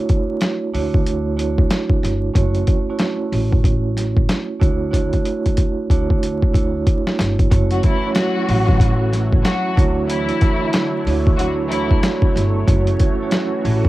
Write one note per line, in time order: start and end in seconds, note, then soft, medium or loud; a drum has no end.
0.00 0.67 A3 medium
0.00 0.67 D4 medium
0.00 0.67 E4 medium
0.00 0.67 F#4 medium
0.00 0.67 C#5 loud
0.09 kick medium
0.09 closed hi-hat medium
0.41 snare loud
0.41 closed hi-hat medium
0.74 1.67 D2 medium
0.74 1.34 A3 medium
0.74 1.34 D4 medium
0.74 1.35 E4 medium
0.74 1.35 F#4 medium
0.74 1.35 C#5 loud
0.74 open hi-hat medium
0.94 kick medium
1.07 closed hi-hat medium
1.37 2.28 A3 medium
1.37 2.29 D4 medium
1.37 2.29 E4 medium
1.37 2.29 F#4 medium
1.37 2.29 C#5 loud
1.37 closed hi-hat medium
1.58 kick medium
1.71 snare loud
1.71 closed hi-hat medium
1.90 kick medium
2.03 2.29 G1 medium
2.03 snare soft
2.03 closed hi-hat medium
2.34 2.61 F#1 loud
2.34 2.82 A3 medium
2.34 2.82 C#4 medium
2.34 2.82 E4 medium
2.34 2.82 F#4 medium
2.34 2.82 C#5 loud
2.34 kick loud
2.34 closed hi-hat loud
2.55 closed hi-hat soft
2.67 kick loud
2.67 closed hi-hat medium
2.90 4.59 A3 medium
2.90 4.62 C#4 medium
2.90 4.59 E4 medium
2.90 4.59 F#4 medium
2.90 4.59 C#5 loud
2.99 snare loud
2.99 closed hi-hat medium
3.32 4.25 A1 medium
3.32 open hi-hat medium
3.53 kick medium
3.64 kick medium
3.64 closed hi-hat medium
3.97 snare soft
3.97 closed hi-hat medium
4.17 kick medium
4.29 snare loud
4.29 closed hi-hat medium
4.60 5.13 D2 medium
4.60 4.90 A3 loud
4.60 4.90 D4 medium
4.60 4.90 E4 medium
4.60 4.90 F#4 medium
4.60 4.91 C#5 loud
4.60 kick loud
4.60 closed hi-hat medium
4.91 5.83 A3 medium
4.91 5.83 D4 medium
4.91 5.83 E4 medium
4.91 5.83 F#4 medium
4.91 5.83 C#5 loud
4.91 kick medium
4.91 closed hi-hat loud
5.13 kick medium
5.13 closed hi-hat soft
5.25 closed hi-hat medium
5.46 kick medium
5.46 closed hi-hat medium
5.57 kick medium
5.57 closed hi-hat medium
5.90 6.83 D2 medium
5.90 6.51 A3 medium
5.90 6.51 D4 medium
5.90 6.51 E4 medium
5.90 6.51 F#4 medium
5.90 6.51 C#5 loud
5.90 kick medium
5.90 closed hi-hat medium
6.10 kick medium
6.23 closed hi-hat medium
6.42 kick medium
6.53 7.45 A3 medium
6.53 7.45 D4 medium
6.53 7.45 E4 medium
6.53 7.45 F#4 medium
6.53 7.45 C#5 loud
6.53 kick medium
6.53 closed hi-hat medium
6.87 kick medium
6.87 closed hi-hat medium
7.07 snare medium
7.19 7.45 G1 medium
7.19 snare loud
7.19 closed hi-hat medium
7.39 kick medium
7.39 closed hi-hat medium
7.50 7.77 F#1 loud
7.50 9.75 E3 medium
7.50 13.89 F#3 medium
7.50 7.98 A3 medium
7.50 13.89 A3 medium
7.50 7.98 C#4 medium
7.50 7.98 E4 medium
7.50 7.99 F#4 medium
7.50 9.75 F#4 medium
7.50 7.99 C#5 loud
7.50 13.89 C#5 medium
7.50 kick loud
7.50 closed hi-hat loud
7.71 7.81 F#3 medium
7.71 7.81 F#4 medium
7.71 closed hi-hat medium
7.83 8.10 E3 medium
7.83 8.10 E4 loud
7.83 kick medium
7.83 closed hi-hat medium
8.06 9.75 A3 medium
8.06 9.78 C#4 medium
8.06 9.75 E4 medium
8.06 9.75 F#4 medium
8.06 9.76 C#5 loud
8.15 9.09 F#3 loud
8.15 9.09 F#4 loud
8.15 snare loud
8.15 closed hi-hat medium
8.49 9.41 A1 loud
8.49 open hi-hat medium
8.69 kick loud
8.80 kick loud
8.80 closed hi-hat medium
9.13 snare soft
9.13 closed hi-hat medium
9.33 kick medium
9.45 9.71 F#3 loud
9.45 9.71 F#4 loud
9.45 snare loud
9.45 closed hi-hat medium
9.76 10.29 D2 medium
9.76 12.64 D3 medium
9.76 10.06 A3 loud
9.76 10.06 D4 medium
9.76 10.06 E4 medium
9.76 12.64 E4 medium
9.76 10.07 F#4 medium
9.76 10.07 C#5 loud
9.76 kick loud
9.76 closed hi-hat medium
10.07 11.01 E3 loud
10.07 10.99 A3 medium
10.07 10.99 D4 medium
10.07 11.01 E4 loud
10.07 10.99 E4 medium
10.07 11.00 F#4 medium
10.07 11.00 C#5 loud
10.07 closed hi-hat loud
10.29 closed hi-hat medium
10.41 kick loud
10.41 closed hi-hat medium
10.73 snare loud
10.73 closed hi-hat medium
11.06 11.99 D2 medium
11.06 11.67 A3 medium
11.06 11.67 D4 medium
11.06 11.67 E4 medium
11.06 11.67 F#4 medium
11.06 11.67 C#5 loud
11.06 open hi-hat medium
11.27 kick medium
11.38 11.54 F#3 loud
11.38 11.54 F#4 loud
11.38 closed hi-hat medium
11.69 11.95 E3 medium
11.69 12.61 A3 medium
11.69 12.61 D4 medium
11.69 11.95 E4 loud
11.69 12.61 E4 medium
11.69 12.61 F#4 medium
11.69 12.61 C#5 loud
11.69 closed hi-hat medium
11.91 kick medium
12.03 snare loud
12.03 closed hi-hat medium
12.22 kick loud
12.36 12.61 G1 medium
12.36 snare soft
12.36 closed hi-hat medium
12.66 12.93 F#1 loud
12.66 13.89 E3 medium
12.66 13.14 A3 medium
12.66 13.14 C#4 medium
12.66 13.15 E4 medium
12.66 13.15 F#4 medium
12.66 13.89 F#4 medium
12.66 13.15 C#5 loud
12.66 kick loud
12.66 closed hi-hat loud
12.87 closed hi-hat medium
12.99 kick medium
12.99 closed hi-hat medium
13.22 13.89 A3 medium
13.22 13.89 C#4 medium
13.22 13.89 E4 medium
13.22 13.89 F#4 medium
13.22 13.89 C#5 loud
13.31 snare loud
13.31 closed hi-hat medium
13.65 13.89 A1 loud
13.65 open hi-hat medium
13.85 kick loud